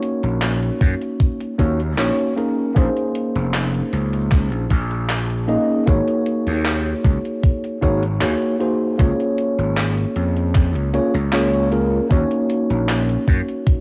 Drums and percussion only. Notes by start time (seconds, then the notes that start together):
0.03 closed hi-hat
0.24 closed hi-hat
0.42 clap, closed hi-hat
0.63 closed hi-hat
0.81 kick, closed hi-hat
1.02 closed hi-hat
1.20 kick, closed hi-hat
1.41 closed hi-hat
1.59 kick, closed hi-hat
1.80 closed hi-hat
1.98 clap, closed hi-hat
2.19 closed hi-hat
2.37 closed hi-hat
2.76 kick, closed hi-hat
2.97 closed hi-hat
3.15 closed hi-hat
3.35 closed hi-hat
3.54 clap, closed hi-hat
3.74 closed hi-hat
3.93 closed hi-hat
4.13 closed hi-hat
4.32 kick, clap, closed hi-hat
4.52 closed hi-hat
4.71 kick, closed hi-hat
4.91 closed hi-hat
5.10 clap, closed hi-hat
5.30 closed hi-hat
5.49 closed hi-hat
5.87 kick, closed hi-hat
6.08 closed hi-hat
6.26 closed hi-hat
6.47 closed hi-hat
6.65 clap, closed hi-hat
6.86 closed hi-hat
7.04 kick, closed hi-hat
7.25 closed hi-hat
7.43 kick, closed hi-hat
7.64 closed hi-hat
7.82 kick, closed hi-hat
8.03 closed hi-hat
8.21 clap, closed hi-hat
8.42 closed hi-hat
8.60 closed hi-hat
8.99 kick, closed hi-hat
9.20 closed hi-hat
9.38 closed hi-hat
9.59 closed hi-hat
9.77 clap, closed hi-hat
9.97 closed hi-hat
10.16 closed hi-hat
10.36 closed hi-hat
10.55 kick, clap, closed hi-hat
10.75 closed hi-hat
10.94 closed hi-hat
11.14 closed hi-hat
11.33 clap, closed hi-hat
11.53 closed hi-hat
11.72 closed hi-hat
12.11 kick, closed hi-hat
12.31 closed hi-hat
12.50 closed hi-hat
12.70 closed hi-hat
12.89 clap, closed hi-hat
13.09 closed hi-hat
13.28 kick, closed hi-hat
13.48 closed hi-hat
13.67 kick, closed hi-hat